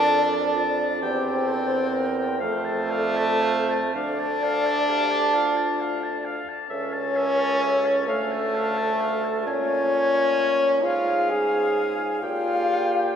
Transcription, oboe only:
0.08 A5
0.31 A5
0.56 A5
0.80 A5
1.02 G5
1.25 G5
1.49 G5
1.71 G5
1.94 G5
2.17 G5
2.40 F5
2.64 A5
2.90 F5
3.16 A5
3.43 F5
3.70 A5
3.95 F5
4.19 A5
4.43 F5
4.66 A5
4.90 F5
5.11 A5
5.34 F5
5.57 A5
5.81 F5
6.03 A5
6.25 F5
6.49 A5
6.70 E5
6.93 A5
7.16 E5
7.39 A5
7.62 E5
7.86 A5
8.08 F5
8.32 A5
8.55 F5
8.78 A5
9.01 F5
9.25 A5
9.47 G#5
10.84 F5
12.23 G5

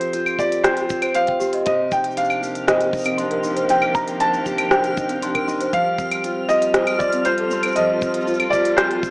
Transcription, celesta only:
Already playing: C4 A4 C5 G5 C6
0.64 G5
1.02 C5
1.15 C5
1.28 G5
1.40 G4
1.53 D#5
1.67 C5
2.67 C5
3.06 C4
3.18 C6
3.31 A#4
3.43 C6
3.56 C5
3.69 C5
4.71 C5
5.09 C4
5.23 C6
5.34 A#4
5.48 C6
5.61 C5
6.75 C5
7.14 C4
7.26 C6
7.40 A4
7.53 C6
7.66 C5
7.77 C5
8.79 C5

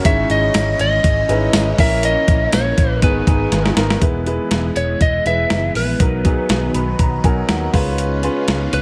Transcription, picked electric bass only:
0.05 G#1
0.30 G#1
0.55 G#1
0.80 G#1
1.04 G#1
1.29 G#1
1.54 G#1
1.79 A#1
2.28 A#1
2.53 A#1
2.78 A#1
3.02 G#1
3.27 G#1
3.52 G#1
3.77 G#1
4.02 E1
4.51 E1
4.76 E1
5.01 E1
5.26 E1
5.51 F#1
5.75 A#1
6.00 B1
6.50 B1
6.75 B1
6.99 B1
7.24 B1
7.49 D#2
7.74 C#2
8.48 C#2
8.73 C#2

